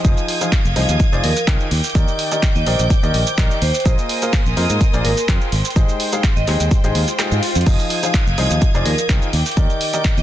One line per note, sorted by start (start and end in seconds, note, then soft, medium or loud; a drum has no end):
0.05 0.13 F1 medium
0.05 0.38 F3 medium
0.05 0.38 D#4 medium
0.05 0.38 F4 medium
0.05 0.38 G#4 medium
0.05 0.38 C5 medium
0.05 0.38 D#5 medium
0.05 1.70 F5 medium
0.05 1.70 D#6 medium
0.05 1.70 G#6 medium
0.05 kick loud
0.05 shaker medium
0.17 shaker soft
0.28 open hi-hat loud
0.41 0.57 F3 medium
0.41 0.57 D#4 medium
0.41 0.57 F4 medium
0.41 0.57 G#4 medium
0.41 0.57 C5 medium
0.41 0.57 F5 medium
0.41 closed hi-hat medium
0.41 shaker medium
0.52 kick loud
0.52 clap loud
0.52 closed hi-hat medium
0.52 shaker medium
0.65 0.72 F1 loud
0.65 shaker soft
0.76 0.84 C2 medium
0.76 1.02 F3 medium
0.76 1.02 D#4 medium
0.76 1.02 F4 medium
0.76 1.02 G#4 medium
0.76 1.02 C5 medium
0.76 1.02 D#5 medium
0.76 open hi-hat medium
0.89 0.96 D#2 medium
0.89 closed hi-hat soft
0.89 shaker medium
1.00 kick loud
1.00 closed hi-hat medium
1.00 shaker medium
1.13 1.20 F1 medium
1.13 1.28 F3 medium
1.13 1.28 D#4 medium
1.13 1.28 F4 medium
1.13 1.28 G#4 medium
1.13 1.28 C5 medium
1.13 1.28 D5 loud
1.13 shaker soft
1.24 1.32 D#2 medium
1.24 1.38 A#4 medium
1.24 open hi-hat loud
1.36 closed hi-hat soft
1.36 shaker medium
1.47 1.56 C2 medium
1.47 1.64 D#3 loud
1.47 1.64 D#4 medium
1.47 1.64 F4 medium
1.47 1.64 G#4 medium
1.47 1.64 C5 medium
1.47 1.64 G5 loud
1.47 kick loud
1.47 clap loud
1.47 closed hi-hat medium
1.47 shaker medium
1.60 shaker soft
1.71 1.80 D#2 loud
1.71 3.83 G5 medium
1.71 3.83 D6 medium
1.71 3.83 G6 medium
1.71 open hi-hat medium
1.84 closed hi-hat soft
1.84 shaker medium
1.90 closed hi-hat medium
1.95 2.04 D#2 loud
1.95 2.29 D#3 medium
1.95 2.29 D#4 medium
1.95 2.29 G4 medium
1.95 2.29 A#4 medium
1.95 2.29 D5 medium
1.95 2.29 D#5 medium
1.95 kick loud
1.95 shaker medium
2.08 shaker soft
2.19 open hi-hat loud
2.32 2.48 D#3 medium
2.32 2.48 D#4 medium
2.32 2.48 G4 medium
2.32 2.48 A#4 medium
2.32 2.48 D5 medium
2.32 2.48 D#5 medium
2.32 closed hi-hat medium
2.32 shaker medium
2.43 kick loud
2.43 clap loud
2.43 closed hi-hat medium
2.43 shaker medium
2.55 2.63 D#2 loud
2.55 2.64 D#5 medium
2.55 shaker soft
2.66 2.75 A#1 medium
2.66 2.93 D#3 medium
2.66 2.93 D#4 medium
2.66 2.93 G4 medium
2.66 2.93 A#4 medium
2.66 2.80 C5 medium
2.66 2.93 D5 medium
2.66 2.93 D#5 medium
2.66 open hi-hat medium
2.79 2.87 A#1 medium
2.79 closed hi-hat medium
2.79 shaker medium
2.90 kick loud
2.90 closed hi-hat medium
2.90 shaker medium
3.03 3.10 D#2 medium
3.03 3.19 D#3 medium
3.03 3.19 D#4 medium
3.03 3.19 G4 medium
3.03 3.19 A#4 medium
3.03 3.19 D5 medium
3.03 3.19 D#5 loud
3.03 shaker soft
3.14 3.23 A#1 medium
3.14 open hi-hat loud
3.27 closed hi-hat medium
3.27 shaker medium
3.38 3.46 A#1 medium
3.38 3.55 D#3 loud
3.38 3.55 D#4 medium
3.38 3.55 G4 medium
3.38 3.55 A#4 medium
3.38 3.55 D5 medium
3.38 3.55 D#5 loud
3.38 kick loud
3.38 clap loud
3.38 closed hi-hat medium
3.38 shaker medium
3.51 shaker soft
3.62 3.70 D#2 loud
3.62 3.91 C5 medium
3.62 open hi-hat medium
3.74 closed hi-hat soft
3.74 shaker medium
3.80 closed hi-hat medium
3.86 3.94 A#1 medium
3.86 4.19 A#3 medium
3.86 4.19 F4 medium
3.86 4.19 G#4 medium
3.86 4.19 A#4 medium
3.86 5.51 A#4 medium
3.86 4.19 C5 medium
3.86 4.19 D#5 medium
3.86 5.51 G#5 medium
3.86 7.63 C6 medium
3.86 5.51 D#6 medium
3.86 kick loud
3.86 shaker medium
3.98 shaker soft
4.09 open hi-hat loud
4.22 4.38 A#3 medium
4.22 4.38 F4 medium
4.22 4.38 G#4 medium
4.22 4.38 A#4 medium
4.22 4.38 C5 medium
4.22 4.38 F5 medium
4.22 closed hi-hat medium
4.22 shaker medium
4.33 kick loud
4.33 clap loud
4.33 closed hi-hat medium
4.33 shaker medium
4.46 4.53 A#1 loud
4.46 shaker soft
4.57 4.65 F2 loud
4.57 4.83 A#3 medium
4.57 4.83 F4 medium
4.57 4.83 G#4 medium
4.57 4.83 A#4 medium
4.57 4.83 C5 medium
4.57 4.83 D#5 medium
4.57 open hi-hat medium
4.70 4.77 G#2 medium
4.70 closed hi-hat medium
4.70 shaker medium
4.81 kick loud
4.81 closed hi-hat medium
4.81 shaker medium
4.94 5.01 A#1 medium
4.94 5.09 A#3 loud
4.94 5.09 F4 medium
4.94 5.09 G#4 medium
4.94 5.09 A#4 medium
4.94 5.09 C5 medium
4.94 5.09 D5 loud
4.94 shaker soft
5.05 5.13 G#1 medium
5.05 5.18 A#4 medium
5.05 open hi-hat loud
5.17 closed hi-hat medium
5.17 shaker medium
5.28 5.37 F2 medium
5.28 5.45 F4 loud
5.28 5.45 G#4 medium
5.28 5.45 A#4 medium
5.28 5.45 C5 medium
5.28 5.45 G5 loud
5.28 kick loud
5.28 clap loud
5.28 closed hi-hat medium
5.28 shaker medium
5.41 shaker soft
5.52 5.61 G#1 loud
5.52 7.64 C5 medium
5.52 7.64 G5 medium
5.52 open hi-hat medium
5.65 closed hi-hat soft
5.65 shaker medium
5.70 closed hi-hat medium
5.76 5.84 G#1 medium
5.76 6.10 G#3 medium
5.76 6.10 D#4 medium
5.76 6.10 G4 medium
5.76 6.10 G#4 medium
5.76 6.10 C5 medium
5.76 6.10 D#5 medium
5.76 kick loud
5.76 shaker medium
5.89 shaker soft
6.00 open hi-hat loud
6.13 6.28 G#3 medium
6.13 6.28 D#4 medium
6.13 6.28 G4 medium
6.13 6.28 G#4 medium
6.13 6.28 C5 medium
6.13 6.28 F5 medium
6.13 closed hi-hat medium
6.13 shaker medium
6.24 kick loud
6.24 clap loud
6.24 closed hi-hat medium
6.24 shaker medium
6.36 6.44 G#1 loud
6.36 6.45 D#5 medium
6.36 shaker soft
6.47 6.56 D#2 loud
6.47 6.74 G#3 medium
6.47 6.74 D#4 medium
6.47 6.74 G4 medium
6.47 6.74 G#4 medium
6.47 6.74 C5 medium
6.47 6.74 D#5 medium
6.47 clap soft
6.47 open hi-hat medium
6.60 6.68 D#2 medium
6.60 closed hi-hat medium
6.60 shaker medium
6.71 kick loud
6.71 closed hi-hat medium
6.71 swell medium
6.71 shaker medium
6.84 6.91 G#1 medium
6.84 7.00 G#3 medium
6.84 7.00 D#4 medium
6.84 7.00 G4 medium
6.84 7.00 G#4 medium
6.84 7.00 C5 medium
6.84 7.00 D#5 loud
6.84 closed hi-hat soft
6.84 shaker soft
6.95 7.04 D#2 medium
6.95 open hi-hat loud
7.08 closed hi-hat medium
7.08 shaker medium
7.19 7.36 G#3 loud
7.19 7.36 D#4 medium
7.19 7.36 G4 medium
7.19 7.36 G#4 medium
7.19 7.36 C5 medium
7.19 7.36 G5 loud
7.19 clap loud
7.19 closed hi-hat medium
7.19 shaker medium
7.32 7.39 G#2 loud
7.32 shaker soft
7.43 open hi-hat medium
7.55 7.63 F2 medium
7.55 closed hi-hat soft
7.55 shaker medium
7.61 closed hi-hat medium
7.66 7.75 F1 medium
7.66 8.00 F3 medium
7.66 8.00 D#4 medium
7.66 8.00 F4 medium
7.66 8.00 G#4 medium
7.66 8.00 C5 medium
7.66 8.00 D#5 medium
7.66 9.32 F5 medium
7.66 9.32 D#6 medium
7.66 9.32 G#6 medium
7.66 kick loud
7.66 closed hi-hat medium
7.66 crash medium
7.66 shaker medium
7.79 shaker soft
7.90 open hi-hat loud
8.03 8.19 F3 medium
8.03 8.19 D#4 medium
8.03 8.19 F4 medium
8.03 8.19 G#4 medium
8.03 8.19 C5 medium
8.03 8.19 F5 medium
8.03 closed hi-hat medium
8.03 shaker medium
8.14 kick loud
8.14 clap loud
8.14 closed hi-hat medium
8.14 shaker medium
8.27 8.34 F1 loud
8.27 shaker soft
8.38 8.46 C2 medium
8.38 8.64 F3 medium
8.38 8.64 D#4 medium
8.38 8.64 F4 medium
8.38 8.64 G#4 medium
8.38 8.64 C5 medium
8.38 8.64 D#5 medium
8.38 open hi-hat medium
8.51 8.58 D#2 medium
8.51 closed hi-hat medium
8.51 shaker medium
8.62 kick loud
8.62 closed hi-hat medium
8.62 shaker medium
8.75 8.82 F1 medium
8.75 8.90 F3 medium
8.75 8.90 D#4 medium
8.75 8.90 F4 medium
8.75 8.90 G#4 medium
8.75 8.90 C5 medium
8.75 8.90 D5 loud
8.75 shaker soft
8.86 8.94 D#2 medium
8.86 8.99 A#4 medium
8.86 open hi-hat loud
8.98 closed hi-hat medium
8.98 shaker medium
9.09 9.18 C2 medium
9.09 9.26 D#3 loud
9.09 9.26 D#4 medium
9.09 9.26 F4 medium
9.09 9.26 G#4 medium
9.09 9.26 C5 medium
9.09 9.26 G5 loud
9.09 kick loud
9.09 clap loud
9.09 closed hi-hat medium
9.09 shaker medium
9.22 shaker soft
9.33 9.42 D#2 loud
9.33 10.23 G5 medium
9.33 10.23 D6 medium
9.33 10.23 G6 medium
9.33 open hi-hat medium
9.46 closed hi-hat soft
9.46 shaker medium
9.51 closed hi-hat medium
9.57 9.65 D#2 loud
9.57 9.91 D#3 medium
9.57 9.91 D#4 medium
9.57 9.91 G4 medium
9.57 9.91 A#4 medium
9.57 9.91 D5 medium
9.57 9.91 D#5 medium
9.57 kick loud
9.57 closed hi-hat medium
9.57 shaker medium
9.70 shaker soft
9.81 open hi-hat loud
9.94 10.09 D#3 medium
9.94 10.09 D#4 medium
9.94 10.09 G4 medium
9.94 10.09 A#4 medium
9.94 10.09 D5 medium
9.94 10.09 D#5 medium
9.94 closed hi-hat medium
9.94 shaker medium
10.05 kick loud
10.05 clap loud
10.05 closed hi-hat medium
10.05 shaker medium
10.17 10.23 D#2 loud
10.17 10.23 D#5 medium
10.17 shaker soft